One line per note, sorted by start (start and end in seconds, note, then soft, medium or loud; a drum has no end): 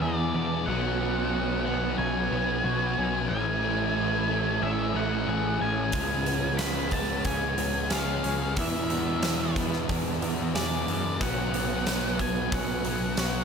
0.00 0.66 E2 medium
0.00 0.65 E2 medium
0.00 0.32 E2 loud
0.00 0.66 B2 medium
0.00 0.35 B2 medium
0.00 0.34 E3 medium
0.00 0.67 E3 medium
0.00 0.33 E3 medium
0.00 0.67 B3 medium
0.00 0.34 D4 medium
0.00 0.67 D4 medium
0.00 0.68 G#4 medium
0.00 0.67 G#4 medium
0.00 0.69 D5 medium
0.34 0.65 E2 medium
0.34 0.66 B2 medium
0.34 0.65 E3 medium
0.34 0.67 D4 medium
0.66 1.95 B1 loud
0.66 3.28 B2 medium
0.66 1.33 B2 medium
0.66 1.32 F#3 medium
0.66 3.29 F#3 medium
0.66 1.01 F#3 medium
0.66 3.30 B3 medium
0.66 0.98 B3 loud
0.66 3.31 C#4 medium
0.66 1.64 F#5 medium
0.70 3.31 F#4 medium
1.00 1.67 F#3 medium
1.00 1.65 B3 medium
1.00 1.64 B3 medium
1.33 2.97 F#3 medium
1.66 2.32 F#3 medium
1.66 2.30 B3 medium
1.66 1.98 F#5 medium
1.98 2.29 B1 loud
1.98 2.97 C#4 medium
1.98 3.28 G#5 loud
2.31 2.62 B1 medium
2.31 2.64 F#3 medium
2.31 2.65 B3 medium
2.31 3.30 B3 medium
2.64 2.94 B1 loud
2.64 3.28 B2 medium
2.64 2.98 F#3 medium
2.64 2.95 B3 medium
2.64 3.30 F#4 medium
2.97 3.28 B1 medium
2.97 3.29 F#3 medium
2.97 3.28 B3 medium
2.97 4.62 C#4 medium
3.29 4.58 A1 loud
3.29 5.92 A2 medium
3.29 3.96 A2 medium
3.29 5.93 E3 medium
3.29 3.96 E3 medium
3.29 3.63 E3 medium
3.29 5.94 A3 medium
3.29 3.61 A3 loud
3.29 5.94 C#4 medium
3.29 5.94 E4 medium
3.29 4.65 G#5 loud
3.63 4.30 E3 medium
3.63 4.27 A3 medium
3.63 4.28 A3 medium
3.97 5.61 E3 medium
4.29 4.95 E3 medium
4.29 4.93 A3 medium
4.29 4.94 A3 medium
4.62 4.92 A1 loud
4.62 5.58 C#4 medium
4.62 4.96 E5 loud
4.94 5.25 A1 medium
4.94 5.26 E3 medium
4.94 5.28 A3 medium
4.94 5.94 A3 medium
4.94 5.61 F#5 loud
5.26 5.58 A1 loud
5.26 5.91 A2 medium
5.26 5.61 E3 medium
5.26 5.59 A3 medium
5.26 7.89 G#4 medium
5.59 5.91 A1 medium
5.59 5.92 E3 medium
5.59 5.91 A3 medium
5.59 5.93 C#4 medium
5.59 6.56 G#5 loud
5.92 7.21 C#2 loud
5.92 8.56 C#3 medium
5.92 6.59 C#3 medium
5.92 6.58 F3 medium
5.92 8.57 F3 medium
5.92 6.28 G#3 medium
5.92 8.57 G#3 medium
5.92 8.58 B3 medium
5.92 6.25 C#4 medium
5.92 8.58 F4 medium
5.92 kick loud
5.92 open hi-hat medium
6.25 6.94 G#3 medium
6.25 6.91 B3 medium
6.25 6.91 C#4 medium
6.25 open hi-hat medium
6.58 8.24 F3 medium
6.58 6.92 B5 loud
6.58 snare loud
6.58 open hi-hat medium
6.91 7.59 G#3 medium
6.91 7.57 B3 medium
6.91 7.56 C#4 medium
6.91 7.25 A5 loud
6.91 kick medium
6.91 open hi-hat medium
7.24 7.55 C#2 medium
7.24 8.23 C#4 medium
7.24 7.93 G#5 loud
7.24 kick loud
7.24 open hi-hat medium
7.57 7.88 C#2 medium
7.57 7.90 G#3 medium
7.57 8.90 B3 medium
7.57 7.92 C#4 medium
7.57 open hi-hat medium
7.90 8.21 C#2 medium
7.90 8.54 C#3 medium
7.90 8.25 G#3 medium
7.90 8.22 C#4 medium
7.90 8.56 G#4 medium
7.90 8.58 F5 medium
7.90 snare loud
7.90 open hi-hat medium
8.23 8.54 C#2 medium
8.23 8.56 G#3 medium
8.23 8.55 C#4 medium
8.23 8.57 C#4 medium
8.23 open hi-hat medium
8.56 11.20 E2 medium
8.56 9.23 E2 medium
8.56 9.85 E2 loud
8.56 11.18 B2 medium
8.56 8.91 B2 medium
8.56 9.21 E3 medium
8.56 11.20 E3 medium
8.56 8.89 E3 loud
8.56 11.20 G#3 medium
8.56 11.21 D4 medium
8.56 11.21 E4 medium
8.56 9.53 E5 medium
8.56 kick loud
8.56 open hi-hat medium
8.90 9.56 B2 soft
8.90 9.54 E3 medium
8.90 9.55 B3 medium
8.90 open hi-hat medium
9.22 10.87 E3 medium
9.22 snare loud
9.22 open hi-hat medium
9.55 10.23 B2 medium
9.55 10.21 E3 medium
9.55 10.21 B3 medium
9.55 kick medium
9.55 open hi-hat medium
9.73 snare soft
9.89 10.19 E2 loud
9.89 10.86 D4 medium
9.89 kick loud
9.89 open hi-hat medium
10.22 10.52 E2 loud
10.22 10.54 B2 medium
10.22 10.55 E3 medium
10.22 11.53 B3 medium
10.22 open hi-hat medium
10.54 11.18 E2 medium
10.54 10.85 E2 loud
10.54 10.88 B2 medium
10.54 10.86 E3 medium
10.54 11.20 G#4 medium
10.54 11.22 D5 medium
10.54 snare loud
10.54 open hi-hat medium
10.87 11.18 F#2 medium
10.87 11.18 B2 medium
10.87 11.18 E3 medium
10.87 11.20 D4 medium
10.87 open hi-hat medium
11.19 12.48 B1 loud
11.19 13.44 B2 medium
11.19 11.86 B2 medium
11.19 13.44 F#3 medium
11.19 11.54 F#3 medium
11.19 11.86 F#3 medium
11.19 13.44 B3 medium
11.19 11.52 B3 medium
11.19 13.44 C#4 medium
11.19 13.44 F#4 medium
11.19 12.21 F#5 medium
11.19 kick loud
11.19 open hi-hat medium
11.53 12.20 F#3 medium
11.53 12.18 B3 medium
11.53 12.19 B3 medium
11.53 open hi-hat medium
11.86 13.44 F#3 medium
11.86 snare loud
11.86 open hi-hat medium
12.19 12.85 F#3 medium
12.19 12.84 B3 medium
12.19 12.54 G#5 loud
12.19 kick medium
12.19 open hi-hat medium
12.52 12.83 B1 loud
12.52 13.44 C#4 medium
12.52 13.44 F#5 medium
12.52 kick loud
12.52 open hi-hat medium
12.85 13.15 B1 loud
12.85 13.17 F#3 medium
12.85 13.19 B3 medium
12.85 13.44 B3 medium
12.85 open hi-hat medium
13.17 13.44 B1 medium
13.17 13.44 B2 medium
13.17 13.44 F#3 medium
13.17 13.44 B3 medium
13.17 13.44 F#4 medium
13.17 snare loud
13.17 open hi-hat medium